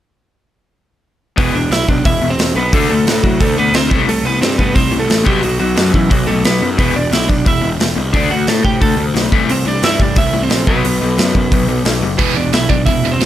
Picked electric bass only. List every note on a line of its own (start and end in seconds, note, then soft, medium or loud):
1.38 1.53 E1 medium
1.53 1.69 E1 medium
1.70 1.85 B1 medium
1.89 2.03 B1 medium
2.06 2.20 E1 medium
2.22 2.37 E1 medium
2.37 2.53 E1 medium
2.55 2.70 B1 medium
2.74 2.88 D2 medium
2.89 3.04 D2 medium
3.05 3.21 A2 medium
3.24 3.38 A2 medium
3.41 3.55 D2 medium
3.56 3.72 D2 medium
3.73 3.88 D2 medium
3.91 4.06 C2 medium
4.08 4.23 C2 medium
4.24 4.39 C2 medium
4.41 4.56 G2 medium
4.59 4.74 G2 medium
4.76 4.90 C2 medium
4.92 5.07 C2 medium
5.10 5.26 A1 medium
5.26 5.41 B1 medium
5.44 5.59 B1 loud
5.62 5.76 B1 medium
5.78 5.92 F#2 medium
5.94 6.09 F#2 medium
6.11 6.26 B1 medium
6.29 6.43 B1 medium
6.45 6.60 B1 medium
6.62 6.77 F#2 medium
6.79 6.94 E1 medium
6.97 7.11 E1 medium
7.13 7.27 B1 medium
7.30 7.44 B1 medium
7.46 7.61 E1 medium
7.63 7.78 E1 medium
7.79 7.94 E1 medium
7.97 8.14 C2 medium
8.14 8.29 D2 medium
8.31 8.46 D2 medium
8.48 8.63 A2 medium
8.65 8.79 A2 medium
8.82 8.96 D2 medium
8.97 9.12 D2 medium
9.14 9.29 B1 medium
9.32 9.47 C2 medium
9.48 9.63 C2 medium
9.66 9.81 C2 medium
9.82 9.97 G2 medium
9.99 10.14 G2 medium
10.17 10.31 C2 medium
10.34 10.48 C2 medium
10.51 10.66 A#1 medium
10.67 10.82 B1 medium
10.84 10.99 B1 medium
11.02 11.16 B1 medium
11.17 11.32 F#2 medium
11.35 11.50 F#2 medium
11.52 11.67 B1 medium
11.69 11.84 B1 medium
11.85 12.00 B1 medium
12.01 12.17 F#1 medium
12.19 12.34 E1 medium
12.35 12.50 E1 medium
12.51 12.67 B1 medium
12.69 12.85 B1 medium
12.87 13.02 E1 medium
13.03 13.18 E1 medium
13.19 13.26 E1 medium